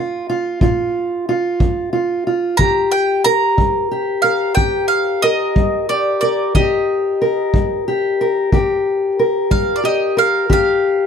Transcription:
Already playing: F3 F4
0.29 F4
0.61 A#2 F4, kick
1.29 F4
1.60 F3, kick
1.93 F4
2.27 F4
2.57 D#3 G4 A#5, kick
2.92 G5
3.24 A#4 A#5
3.57 G3, kick
3.91 G4
4.22 A#4 F5
4.55 D#3 G4 G5, kick
4.88 F5
5.22 A#4 D#5
5.56 G3, kick
5.89 G4 D5
6.21 A#4 D5
6.55 D#3 G4 D#5, kick
7.22 A#4
7.53 G3, kick
7.88 G4
8.21 A#4
8.52 D#3 G4, kick
9.19 A#4
9.51 G3 F5, kick
9.76 D5
9.84 G4 D#5
10.17 A#4 F5
10.49 D#3 G4 F5, kick

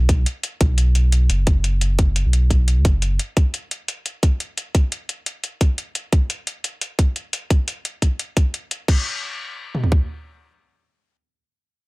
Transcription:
Already playing: B1
0.09 kick, closed hi-hat
0.26 closed hi-hat
0.43 closed hi-hat
0.61 B1, kick, closed hi-hat
0.78 closed hi-hat
0.95 closed hi-hat
1.12 closed hi-hat
1.30 F#1, closed hi-hat
1.47 kick, closed hi-hat
1.64 closed hi-hat
1.81 closed hi-hat
1.99 kick, closed hi-hat
2.16 closed hi-hat
2.25 B1
2.33 closed hi-hat
2.50 kick, closed hi-hat
2.68 closed hi-hat
2.77 D#2
2.85 F#1, kick, closed hi-hat
3.02 closed hi-hat
3.19 closed hi-hat
3.37 kick, closed hi-hat
3.54 closed hi-hat
3.71 closed hi-hat
3.88 closed hi-hat
4.06 closed hi-hat
4.23 kick, closed hi-hat
4.40 closed hi-hat
4.58 closed hi-hat
4.75 kick, closed hi-hat
4.92 closed hi-hat
5.09 closed hi-hat
5.26 closed hi-hat
5.44 closed hi-hat
5.61 kick, closed hi-hat
5.78 closed hi-hat
5.95 closed hi-hat
6.13 kick, closed hi-hat
6.30 closed hi-hat
6.47 closed hi-hat
6.64 closed hi-hat
6.81 closed hi-hat
6.99 kick, closed hi-hat
7.16 closed hi-hat
7.33 closed hi-hat
7.50 kick, closed hi-hat
7.68 closed hi-hat
7.85 closed hi-hat
8.02 kick, closed hi-hat
8.19 closed hi-hat
8.37 kick, closed hi-hat
8.54 closed hi-hat
8.71 closed hi-hat
8.88 kick, crash
9.75 mid tom
9.84 floor tom
9.92 kick

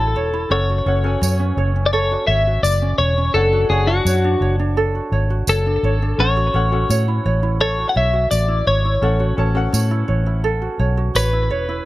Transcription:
Already playing: A1 C#4 E4 F#4 A4 C#5
0.15 E1 C#5
0.34 E4
0.50 F#1 C#4 A4 C#5 F#5
0.69 F#4
0.86 F#1 C#4 A4 C#5 F#5
1.04 C#4 F#4 A4 G#5
1.21 F#2 C#5, tambourine
1.40 C#4
1.57 F#1 C#5
1.76 C#4
1.86 D5
1.93 A4 C#5
2.12 F#4
2.27 G#1 C#5 E5
2.47 F#4
2.63 F#1 D5, tambourine
2.82 C#4
2.98 E1 C#5
3.18 C#4
3.34 F#1 D4 A4 C#5 F#5
3.53 F#4
3.69 F#1 D4 G#4 C#5 F#5
3.87 D4 F#4 C#5 A5
4.05 F#2 C#5, tambourine
4.24 D4
4.41 F#1 C#5
4.59 D4
4.77 A4
4.95 F#4
5.12 G#1 C#5
5.30 F#4
5.47 F#1 A4 C#5, tambourine
5.66 D4
5.83 G#1 C#5
6.02 D4
6.18 A1 C#4 A4 C#5 F#5
6.37 F#4
6.54 A1 C#4 A4 C#5 F#5
6.71 C#4 F#4 A4 F#5
6.90 A2 C#5, tambourine
7.08 E4
7.26 A1 C#5
7.43 E4
7.60 A4 C#5
7.78 F#4
7.89 F#5
7.96 B1 C#5 E5
8.13 F#4
8.31 A1 D5, tambourine
8.48 E4
8.67 G#1 C#5
8.85 E4
9.02 A1 C#4 A4 F#5
9.20 F#4
9.37 A1 C#4 A4 C#5 A5
9.55 C#4 F#4 A4 F#5
9.73 A2 C#5, tambourine
9.91 E4
10.08 A1 C#5
10.26 E4
10.44 A4
10.62 F#4
10.79 B1 C#5
10.97 F#4
11.15 A1 B4 C#5, tambourine
11.33 E4
11.51 E1 C#5
11.69 E4

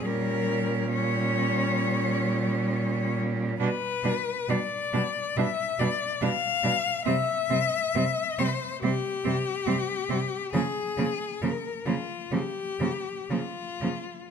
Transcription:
0.04 A#2 G3 C#4 A#4
0.92 G3 C#4 C#5
3.59 B2 G3 D4 B4
4.04 B2 G3 D4
4.49 B2 G3 D4 D5
4.93 B2 G3 D4
5.37 B2 G3 D4 E5
5.79 B2 G3 D4 D5
6.21 B2 G3 D4 F5
6.63 B2 G3 D4
7.05 C3 G3 C4 E5
7.50 C3 G3 C4
7.95 C3 G3 C4
8.39 C3 G3 C4 C5
8.82 C3 G3 C4 G4
9.24 C3 G3 C4
9.66 C3 G3 C4
10.09 C3 G3 C4
10.53 C#3 F3 A#3 G#4
10.98 C#3 F3 A#3
11.41 C#3 F3 A#3 A#4
11.86 C#3 F3 A#3 F4
12.31 C#3 F3 A#3 G4
12.79 C#3 F3 A#3
13.30 C#3 F3 A#3 F4
13.81 C#3 F3 A#3

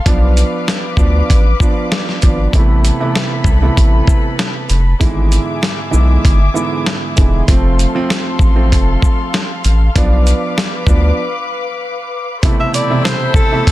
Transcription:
Already playing: F5
0.06 B1 F3 B3 D4 B4 D6, kick, closed hi-hat
0.37 closed hi-hat, shaker
0.68 snare, closed hi-hat
0.97 D2 F3 B3 D4, kick, shaker
1.30 A1, kick, closed hi-hat
1.60 F3 B3 D4, kick, shaker
1.92 snare, closed hi-hat
2.09 snare
2.22 G#1 F3 B3 D4, kick, closed hi-hat, shaker
2.53 A1 C3 E3 A3 B3 E4 A4 B4 B5, kick, closed hi-hat
2.85 closed hi-hat, shaker
3.00 C3 E3 A3 B3 E4
3.15 snare, closed hi-hat
3.44 C2, kick, shaker
3.62 C3 E3 A3 B3 E4
3.77 A1, kick, closed hi-hat
4.07 kick, shaker
4.39 snare, closed hi-hat
4.70 F1, closed hi-hat, shaker
5.00 G#1 G#2 D3 E3 G#3 B3 E4 G#4 E5 D6, kick, closed hi-hat
5.32 closed hi-hat, shaker
5.63 snare, closed hi-hat
5.91 B1 G#2 D3 E3 G#3 B3 E4, shaker
6.25 G1, kick, closed hi-hat
6.54 G#2 D3 E3 G#3 B3 E4, shaker
6.86 snare, closed hi-hat
7.16 E1 G#2 D3 E3 G#3 B3 E4, kick, closed hi-hat, shaker
7.48 F1 F3 A3 C4 A4 F5 C6, kick, closed hi-hat
7.79 closed hi-hat, shaker
7.95 F3 A3 C4
8.10 snare, closed hi-hat
8.39 A1, kick, shaker
8.55 F3 A3 C4
8.72 F1, kick, closed hi-hat
9.02 kick, shaker
9.34 snare, closed hi-hat
9.64 A1, closed hi-hat, shaker
9.95 B1 F3 B3 D4 B4 D6, kick, closed hi-hat
10.27 closed hi-hat, shaker
10.58 snare, closed hi-hat
10.87 D2 F3 B3 D4, kick, shaker
12.42 B2 C3 E3 A3 E4 A4 C5 B5, kick, closed hi-hat
12.60 E5
12.74 D5, closed hi-hat, shaker
12.90 B2 C3 E3 A3 E4
13.04 C5, snare, closed hi-hat
13.34 A4, kick, shaker
13.52 B2 C3 E3 A3 E4
13.67 kick, closed hi-hat

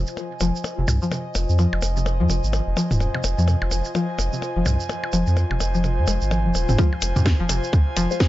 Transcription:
Already playing: F4 C5 D#5 G#5
0.07 shaker
0.17 percussion blips, shaker
0.40 F1 F3, percussion blips, shaker
0.56 shaker
0.64 percussion blips, shaker
0.78 F1 C3
0.88 C2, mid tom, percussion blips, shaker
1.02 F3, shaker
1.12 C3, percussion blips, shaker
1.35 F1, percussion blips, shaker
1.49 F2, shaker
1.59 F3, percussion blips, shaker
1.73 F1, percussion blips
1.82 F1, percussion blips, shaker
1.97 C3, shaker
2.06 percussion blips, shaker
2.20 F2 F3
2.30 F1 C3, percussion blips, shaker
2.44 G#1, shaker
2.53 percussion blips, shaker
2.67 F1
2.77 F3, percussion blips, shaker
2.91 D#1, mid tom, shaker
3.00 percussion blips, shaker
3.15 C3, percussion blips
3.24 F1, percussion blips, shaker
3.38 F2 F3, shaker
3.48 C3, percussion blips, shaker
3.62 F1, percussion blips
3.71 F1, percussion blips, shaker
3.85 shaker
3.95 F3, percussion blips, shaker
4.19 F1, percussion blips, shaker
4.33 C3, shaker
4.42 percussion blips, shaker
4.56 F1 F3
4.66 C2 C3, mid tom, percussion blips, shaker
4.80 shaker
4.89 percussion blips, shaker
5.04 percussion blips
5.13 F1 F3, percussion blips, shaker
5.27 F2, shaker
5.37 percussion blips, shaker
5.51 F1 C3, percussion blips
5.60 F1, percussion blips, shaker
5.74 F3, shaker
5.84 C3, percussion blips, shaker
5.98 F2
6.07 F1 G#3, percussion blips, shaker
6.21 G#1, shaker
6.31 F3, percussion blips, shaker
6.45 F1 F3
6.55 D#1, percussion blips, shaker
6.69 F1 C4, mid tom, shaker
6.78 F3 G#3 F4 C5, kick, percussion blips, shaker
6.93 percussion blips
7.02 F1, open hi-hat, percussion blips, shaker
7.16 F2 C3, mid tom, shaker
7.26 kick, snare, percussion blips, shaker
7.40 F1 F3
7.49 F1 C3, open hi-hat, percussion blips, shaker
7.64 shaker
7.73 kick, percussion blips, shaker
7.97 F1 F3, open hi-hat, percussion blips, shaker
8.11 G#3 F4 C5, shaker
8.20 kick, snare, percussion blips, shaker

